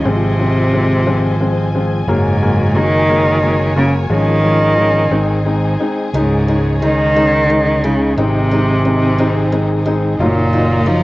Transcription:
Already playing: F4 D#5 G#5
0.04 G#1 C3 F3 G#3 C4 C5
0.39 F3 G#3 C4
0.73 F3 G#3 C4
1.07 F3 G#3 C4
1.41 F3 G#3 C4
1.75 F3 G#3 C4
2.07 F#1 G#2 F#3 G#3 A#3 F#4 A#4 C#5
2.42 F#3 G#3 A#3
2.75 D#3 F#3 G#3 A#3
3.09 F#3 G#3 A#3
3.42 F#3 G#3 A#3
3.76 C#3 F#3 G#3 A#3
4.09 G#1 D#3 F3 G#3 C#4 F4 G#4
4.43 F3 G#3 C#4
4.77 F3 G#3 C#4
5.11 G#1 G#3 C4 D#4 C5
5.45 G#3 C4 D#4
5.80 G#3 C4 D#4
6.13 C#2 G#2 D#3 G#3 C#4 D#4 C#5
6.48 G#3 C#4 D#4
6.82 D#3 G#3 C#4 D#4
7.16 G#3 C#4 D#4
7.50 D#3 G#3 C#4 D#4
7.84 C#3 G#3 C#4 D#4
8.17 G#1 C3 D#3 G#3 C4 D#4 G#4 C5
8.51 G#3 C4 D#4
8.85 D#3 G#3 C4 D#4
9.18 G#3 C4 D#4
9.52 D#3 G#3 C4 D#4
9.86 G#3 C4 D#4
10.19 F#1 A#2 F#3 D#4 F4 A#4 D#5 F5
10.53 F#3 D#4 F4
10.86 F3 F#3 A#3 D#4 F4

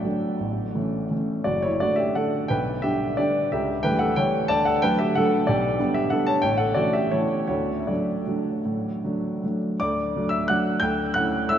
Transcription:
Already playing: A4 F#5
0.04 F#3 A3 D4
0.40 A1
0.75 E3 A3 C#4
1.11 E3 A3 C#4
1.44 F#1 F#4 D5
1.62 E4 C#5
1.80 D3 A3 D4 F#4 D5
1.96 G4 E5
2.15 D3 A3 D4 A4 F#5
2.48 B1 B4 G5
2.82 D3 G3 D4 G4 E5
3.17 D3 G3 D4 G4 D5
3.52 C#2 G4 E5
3.83 E3 G3 A3 B4 G5
3.99 A4 F#5
4.16 E3 G3 A3 C#5 G5
4.48 D2 D5 A5
4.65 A4 F#5
4.82 D3 F#3 A3 B4 G5
4.99 G4 E5
5.15 D3 F#3 A3 A4 F#5
5.47 B1 G4 D5
5.79 D3 G3 B3
5.94 G4 E5
6.10 D3 G3 B3 A4 F#5
6.27 C#5 A5
6.42 A1 C#5 G5
6.57 A4 F#5
6.74 E3 A3 C#4 F#4 D5
6.93 G4 E5
7.11 E3 A3 C#4 E4 C#5
7.47 D2 F#4 C#5
7.80 E5
7.87 F#3 A3 D4 F#4 D5
8.27 F#3 A3 D4
8.65 A2
9.04 F#3 A3 D4
9.44 F#3 A3 D4
9.80 D2 D5 D6
10.16 F#3 A3 D4
10.29 E5 E6
10.48 F#3 A3 D4 F#5 F#6
10.80 D2 G5 G6
11.14 A3 C#4 E4 F#5 F#6
11.49 A3 C#4 E4 E5 E6

